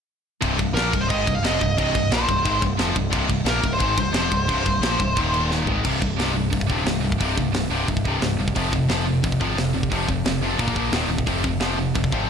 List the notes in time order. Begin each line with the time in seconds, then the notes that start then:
0.41 C1 C2 G2 C3, kick, crash
0.59 C1 C2 G2, kick, crash
0.74 A#1 A#2 F3 A#3 A#4, snare, crash
0.93 C1 C2 G2, kick, crash
1.01 C5
1.09 G#1 G#2 D#3 G#3 D#5, kick, crash
1.27 C1 C2 G2, kick, crash
1.35 F5
1.43 F1 F2 C3 F3 D#5, snare, crash
1.60 C1 C2 G2, kick, crash
1.77 C1 C2 G2 C3 D#5, kick, crash
1.95 C1 C2 G2, kick, crash
2.12 A#1 A#2 F3 A#3 C5, snare, crash
2.29 C1 C2 G2, kick, crash
2.45 G#1 G#2 D#3 G#3, kick, crash
2.62 C1 C2 G2, kick, crash
2.78 F1 F2 C3 F3, snare, crash
2.95 C1 C2 G2, kick, crash
3.10 C1 C2 G2 C3, kick, crash
3.27 C1 C2 G2, kick, crash
3.44 A#1 A#2 F3 A#3 A#4, snare, crash
3.62 C1 C2 G2, kick, crash
3.73 C5
3.79 G#1 G#2 D#3 G#3, kick, crash
3.96 C1 C2 G2 C5, kick, crash
4.12 F1 F2 C3 F3, snare, crash
4.32 C1 C2 G2, kick, crash
4.48 C1 C2 G2 C3, kick, crash
4.66 C1 C2 G2, kick, crash
4.80 A#1 A#2 F3 A#3, snare, crash
4.99 C1 C2 G2, kick, crash
5.17 D#1 D#2 A#2 D#3, kick, crash
5.34 crash
5.51 snare
5.65 G#1 G#2, floor tom
5.69 D#3 G#3
5.85 C1 C2 G2 C3, kick, crash
6.01 C2 G2, kick
6.17 C1 C2 G2 C3, snare, open hi-hat
6.36 C2 G2
6.52 C1 C2 G2, kick, open hi-hat
6.61 kick
6.70 D#1 C2 G2 C3, kick
6.86 C1 C2 G2, snare, open hi-hat
7.01 C1 C2 G2
7.05 C2
7.12 kick
7.20 C1 C2 G2 C3, kick, open hi-hat
7.38 C1 C2 G2, kick
7.53 C1 C2 G2, snare, open hi-hat
7.69 C1 C2 G2 C3
7.88 C1 C2 G2, kick, open hi-hat
7.97 kick
8.05 C2 G2 C3, kick
8.21 C1 C2 G2, snare, open hi-hat
8.38 E1 C2 G2
8.48 kick
8.55 F1 F2 C3 F3, kick, open hi-hat
8.72 F2 C3, kick
8.88 F1 F2 C3 F3, snare, open hi-hat
9.06 F2 C3
9.23 F1 F2 C3, kick, open hi-hat
9.32 kick
9.40 G#1 F2 C3 F3, kick
9.56 F1 F2 C3, snare, open hi-hat
9.74 F1 F2 C3
9.83 kick
9.92 F1 F2 C3 F3, kick, open hi-hat
10.08 F1 F2 C3, kick
10.24 F1 F2 C3, snare, open hi-hat
10.40 F1 F2 C3 F3
10.59 A#1 A#2 F3 A#3, kick, open hi-hat
10.68 kick
10.76 A#2 F3 A#3, kick
10.92 D#1 D#2 A#2 D#3, snare, open hi-hat
11.08 D#1 D#2 A#2
11.18 kick
11.26 F1 F2 C3 F3, kick, open hi-hat
11.44 F2 C3, kick
11.59 F1 F2 C3 F3, snare, open hi-hat
11.78 F2 C3
11.95 F1 F2 C3, kick, open hi-hat
12.04 kick
12.11 G#1 F2 C3 F3, kick